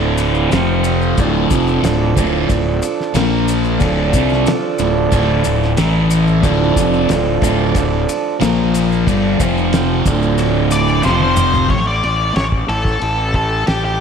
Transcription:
Already playing: fingered electric bass D1, distorted electric guitar D2 A2 D3, harmonium F3 D4 A4 D5
0.18 ride, maracas
0.35 maracas
0.52 fingered electric bass F1, distorted electric guitar F2 C3 F3, harmonium C4 C5 F5, snare, ride, maracas
0.84 ride, maracas
1.02 maracas
1.18 fingered electric bass D1, distorted electric guitar D2 A2 D3, harmonium D4 A4 D5, kick, ride, maracas
1.50 fingered electric bass F1, distorted electric guitar F2 C3 F3, kick, ride, maracas
1.67 maracas
1.83 fingered electric bass D1, distorted electric guitar D2 A2, snare, ride, maracas
2.16 fingered electric bass D1, distorted electric guitar D2 A2 D3, kick, ride, maracas
2.49 fingered electric bass D1, distorted electric guitar D2 A2, kick, ride, maracas
2.82 ride, maracas
3.00 snare
3.14 fingered electric bass A#1, distorted electric guitar A#2 F3 A#3, harmonium A#3 A#4 F5, snare, ride, maracas
3.48 ride, maracas
3.64 maracas
3.79 fingered electric bass D1, distorted electric guitar D2 A2 D3, harmonium D4 A4 D5, kick, ride, maracas
4.13 fingered electric bass C2, distorted electric guitar C3 G3 C4, kick, ride, maracas
4.29 snare, maracas
4.46 snare, ride, maracas
4.78 fingered electric bass D1, distorted electric guitar D2 A2, ride, maracas
5.11 fingered electric bass D1, distorted electric guitar D2 A2 D3, kick, ride, maracas
5.44 fingered electric bass D1, distorted electric guitar D2 A2, ride, maracas
5.62 snare
5.77 fingered electric bass A1, distorted electric guitar A2 E3 A3, harmonium E3 A3 E5, snare, ride, maracas
6.11 ride, maracas
6.27 maracas
6.41 fingered electric bass D1, distorted electric guitar D2 A2 D3, harmonium F3 D4 D5, kick, ride, maracas
6.76 fingered electric bass F1, distorted electric guitar F2 C3 F3, kick, snare, ride, maracas
6.93 maracas
7.09 fingered electric bass D1, distorted electric guitar D2 A2, snare, ride, maracas
7.41 fingered electric bass D1, distorted electric guitar D2 A2 D3, kick, ride, maracas
7.75 fingered electric bass D1, distorted electric guitar D2 A2, kick, ride, maracas
8.09 ride, maracas
8.40 fingered electric bass A#1, distorted electric guitar A#2 F3 A#3, harmonium A#3 A#4 F5, snare, ride, maracas
8.74 ride, maracas
8.92 maracas
9.07 fingered electric bass G1, distorted electric guitar G2 D3 G3, harmonium D4 A4 D5, kick, ride, maracas
9.39 fingered electric bass F1, distorted electric guitar F2 C3 F3, harmonium C4 C5 F5, kick, ride, maracas
9.57 maracas
9.73 snare, ride, maracas
10.04 fingered electric bass D1, distorted electric guitar D2 A2 D3, harmonium F3 D4 A4 D5, kick, ride, maracas
10.22 maracas
10.38 ride, maracas
10.71 lead electric guitar D5, ride, maracas
10.87 maracas
11.03 fingered electric bass F1, distorted electric guitar F2 C3 F3, harmonium F3 C4 C5 F5, lead electric guitar C5, snare, maracas
11.20 lead electric guitar C5, high tom
11.36 mid tom, maracas
11.53 floor tom, maracas
11.70 fingered electric bass A1, lead electric guitar C#5, kick, ride
11.87 lead electric guitar D5
12.04 fingered electric bass A1, ride
12.36 fingered electric bass A1, lead electric guitar C#5, snare, ride
12.52 kick
12.69 fingered electric bass A1, lead electric guitar A4, ride
12.85 kick, snare
13.02 fingered electric bass A1, ride
13.34 lead electric guitar A4, kick, ride
13.67 fingered electric bass A1, lead electric guitar G4, snare, ride
13.85 lead electric guitar G4

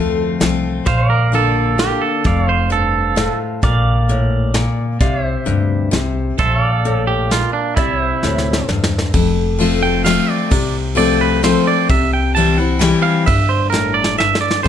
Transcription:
Already playing: upright bass D2, steel-string acoustic guitar F2 F3 A3 C4 F4, pedal steel guitar C5 F5
0.40 upright bass C2, steel-string acoustic guitar F3 A3 C4 F4, snare, closed hi-hat
0.86 upright bass A#1, steel-string acoustic guitar A#2, pedal steel guitar C5 F5, clean electric guitar C5, kick, closed hi-hat
1.10 clean electric guitar A#4, pedal steel guitar D5
1.32 steel-string acoustic guitar D3 A#3 D4 F4, clean electric guitar A4, closed hi-hat
1.78 steel-string acoustic guitar D3 A#3 D4 F4, clean electric guitar G4, snare, closed hi-hat
2.01 clean electric guitar A4
2.24 upright bass F1, steel-string acoustic guitar F2, pedal steel guitar D5 F5, kick, closed hi-hat
2.49 clean electric guitar C5, pedal steel guitar C5
2.70 steel-string acoustic guitar G2, clean electric guitar A4, closed hi-hat
3.16 steel-string acoustic guitar A2, snare, closed hi-hat
3.63 upright bass A#1, steel-string acoustic guitar A#2, pedal steel guitar D5 F5, kick, closed hi-hat
4.09 steel-string acoustic guitar A2, closed hi-hat
4.54 steel-string acoustic guitar A#2, snare, closed hi-hat
5.01 upright bass C2, steel-string acoustic guitar C3, pedal steel guitar D5 F5, kick, closed hi-hat
5.21 pedal steel guitar E5
5.26 pedal steel guitar C5
5.46 upright bass D2, steel-string acoustic guitar G2, closed hi-hat
5.91 upright bass C2, steel-string acoustic guitar C3, snare, closed hi-hat
6.38 upright bass A#1, steel-string acoustic guitar A#2, clean electric guitar A4, pedal steel guitar C5 E5, kick, closed hi-hat
6.60 pedal steel guitar F5
6.64 pedal steel guitar D5
6.85 steel-string acoustic guitar A2, closed hi-hat
7.07 clean electric guitar G4
7.31 steel-string acoustic guitar A#2, clean electric guitar F4, snare, closed hi-hat
7.53 clean electric guitar D4
7.76 upright bass C2, steel-string acoustic guitar C3, clean electric guitar E4, pedal steel guitar D5 E5, kick, closed hi-hat
8.03 pedal steel guitar C5
8.23 upright bass D2, steel-string acoustic guitar A2, snare
8.38 snare
8.53 snare
8.69 upright bass E2, steel-string acoustic guitar G2, snare
8.84 snare
8.98 snare
9.14 upright bass F1, steel-string acoustic guitar F2, kick, ride
9.59 steel-string acoustic guitar F3 A3 C4 F4, ride
9.83 clean electric guitar G5
10.05 steel-string acoustic guitar F3 A3 C4 F4, clean electric guitar F5, snare, ride
10.30 clean electric guitar D5
10.51 upright bass C2, steel-string acoustic guitar C3, kick, ride
10.95 steel-string acoustic guitar F3 A3 C4 F4, clean electric guitar D5, ride
11.21 clean electric guitar B4
11.43 steel-string acoustic guitar F3 A3 C4 F4, clean electric guitar C5, snare, ride
11.67 clean electric guitar D5
11.90 upright bass C2, steel-string acoustic guitar C3, clean electric guitar E5, kick, ride
12.13 clean electric guitar G5
12.35 steel-string acoustic guitar E3 G3 C4 E4, clean electric guitar A5, ride
12.58 steel-string acoustic guitar C4 E4, clean electric guitar F#5
12.79 steel-string acoustic guitar E3 G3 C4 E4, clean electric guitar G5, snare, ride
13.02 clean electric guitar F5
13.26 upright bass G1, steel-string acoustic guitar G2, clean electric guitar E5, kick, ride
13.49 clean electric guitar C5
13.70 steel-string acoustic guitar A2, clean electric guitar A#4, snare
13.94 clean electric guitar D5
14.04 snare
14.18 steel-string acoustic guitar G2, clean electric guitar E5, snare
14.35 snare
14.41 clean electric guitar D5
14.51 snare
14.63 steel-string acoustic guitar F2, clean electric guitar C5

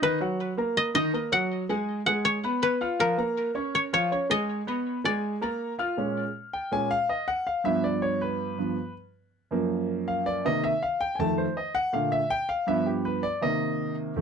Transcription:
0.02 grand piano D#3 D#4 D#5, koto B4
0.21 grand piano F#3 F#4 F#5
0.58 grand piano A#3 A#4 A#5
0.77 koto D#5
0.95 grand piano D#3 D#4 D#5, koto D#5
1.13 grand piano A#3 A#4 A#5
1.32 grand piano F#3 F#4 F#5, koto F#5
1.69 grand piano G#3 G#4 G#5
2.06 grand piano G#3 G#4 G#5, koto F#5
2.25 koto C#5
2.44 grand piano B3 B4 B5
2.63 koto B4
2.81 grand piano F4 F5 F6
2.99 grand piano F3 F4 F5, koto A#4
3.18 grand piano A#3 A#4 A#5
3.55 grand piano C#4 C#5 C#6
3.75 koto C#5
3.93 grand piano F3 F4 F5, koto C#5
4.12 grand piano C#4 C#5 C#6
4.30 grand piano G#3 G#4 G#5, koto D#5
4.67 grand piano B3 B4 B5
5.04 grand piano G#3 G#4 G#5, koto D5
5.41 grand piano A#3 A#4 A#5
5.78 grand piano F4 F5 F6
5.97 grand piano A#2 G#3 C#4
6.53 grand piano G5
6.72 grand piano A#2 G#3 C#4 G#5
6.91 grand piano F5
7.09 grand piano D#5
7.28 grand piano F#5
7.47 grand piano F5
7.64 grand piano G2 F3 B3 E5
7.84 grand piano D5
8.02 grand piano C#5
8.21 grand piano B4
8.58 grand piano G2 F3 B3
9.51 grand piano F#2 F3 A#3
10.08 grand piano F5
10.26 grand piano D5
10.45 grand piano C3 D#3 A#3 D#5
10.64 grand piano E5
10.83 grand piano F5
11.01 grand piano G5
11.15 grand piano F2 D#3 G#5
11.20 grand piano A3 A5
11.38 grand piano C5
11.57 grand piano D#5
11.75 grand piano F#5
11.93 grand piano A#2 D3 A3 F5
12.12 grand piano E5
12.30 grand piano G5
12.49 grand piano F5
12.67 grand piano G2 F3 B3 E5
12.86 grand piano G4
13.05 grand piano B4
13.23 grand piano D5
13.41 grand piano C3 D#3 A#3 D#5
14.16 grand piano F2 D#3 A3

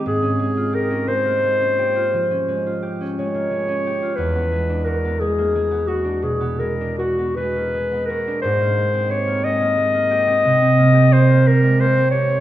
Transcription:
Already playing: harp G#3 C4 G4
0.06 harp G#2, clarinet G#4
0.22 harp C#4
0.39 harp G#3
0.57 harp F4
0.73 harp G4, clarinet A#4
0.91 harp C#4
1.08 harp G#3, clarinet C5
1.25 harp A#3
1.43 harp G#3
1.60 harp C#4
1.79 harp G4
1.96 harp F4
2.14 harp F3
2.31 harp C#4
2.48 harp G#3
2.66 harp F4
2.83 harp G4
3.01 harp C#4
3.18 harp G#3, clarinet C#5
3.34 harp A#3
3.51 harp G#3
3.68 harp C#4
3.87 harp G4
4.02 harp F4
4.16 harp E2, clarinet B4
4.35 harp B3
4.52 harp G#3
4.69 harp D4
4.85 harp F#4, clarinet A#4
5.05 harp B3
5.20 harp G#3, clarinet G#4
5.38 harp A#3
5.55 harp G#3
5.71 harp B3
5.87 clarinet F#4, harp F#4
6.04 harp D4
6.22 harp B2, clarinet G#4
6.41 harp B3
6.59 harp G#3, clarinet A#4
6.81 harp D4
6.98 clarinet F#4, harp F#4
7.18 harp B3
7.35 harp G#3, clarinet B4
7.56 harp A#3
7.74 harp G#3
7.92 harp B3
8.06 harp F#4, clarinet A#4
8.27 harp D4
8.42 harp G#2, clarinet C5
8.61 harp A#3
8.77 harp G#3
8.94 harp C4
9.10 harp G4, clarinet C#5
9.27 harp A#3
9.44 harp G#3, clarinet D#5
9.60 harp A#3
9.77 harp G#3
9.94 harp A#3
10.11 harp G4
10.27 harp C4
10.45 harp C3
10.61 harp C4
10.78 harp A#3
10.94 harp G4
11.12 harp C4, clarinet C5
11.30 harp A#3
11.47 harp G3, clarinet A#4
11.63 harp G#3
11.80 harp A#3, clarinet C5
11.96 harp C4
12.10 harp G4, clarinet C#5
12.29 harp C4

